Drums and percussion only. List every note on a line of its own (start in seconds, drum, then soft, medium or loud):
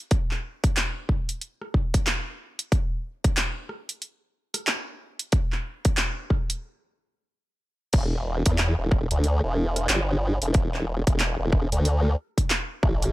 0.11 kick loud
0.11 closed hi-hat soft
0.31 clap soft
0.64 kick loud
0.64 closed hi-hat medium
0.77 clap loud
0.77 closed hi-hat soft
1.09 kick medium
1.29 closed hi-hat medium
1.41 closed hi-hat medium
1.62 cross-stick soft
1.74 kick medium
1.94 kick loud
1.94 closed hi-hat medium
2.07 cross-stick soft
2.07 clap loud
2.07 closed hi-hat medium
2.59 closed hi-hat medium
2.72 kick loud
2.72 closed hi-hat medium
3.24 kick loud
3.24 closed hi-hat medium
3.37 clap loud
3.37 closed hi-hat soft
3.69 cross-stick soft
3.89 closed hi-hat medium
4.02 closed hi-hat medium
4.54 cross-stick soft
4.54 closed hi-hat medium
4.67 clap loud
4.67 closed hi-hat medium
5.19 closed hi-hat medium
5.32 kick loud
5.32 closed hi-hat medium
5.52 clap soft
5.85 kick loud
5.85 closed hi-hat medium
5.97 clap loud
5.97 closed hi-hat medium
6.30 kick medium
6.30 cross-stick soft
6.50 closed hi-hat medium
7.93 kick loud
7.93 closed hi-hat medium
7.93 crash loud
8.46 kick loud
8.46 closed hi-hat medium
8.58 clap loud
8.58 closed hi-hat medium
8.91 kick loud
8.91 cross-stick soft
9.11 closed hi-hat medium
9.24 closed hi-hat medium
9.76 cross-stick soft
9.76 closed hi-hat medium
9.89 clap loud
9.89 closed hi-hat medium
10.42 closed hi-hat medium
10.54 kick loud
10.54 closed hi-hat medium
10.74 clap soft
11.07 kick loud
11.07 closed hi-hat medium
11.20 clap loud
11.20 closed hi-hat medium
11.53 kick loud
11.72 closed hi-hat medium
11.85 closed hi-hat medium
12.05 cross-stick soft
12.38 kick medium
12.38 closed hi-hat medium
12.50 cross-stick medium
12.50 clap loud
12.50 closed hi-hat medium
12.83 kick loud
13.02 closed hi-hat medium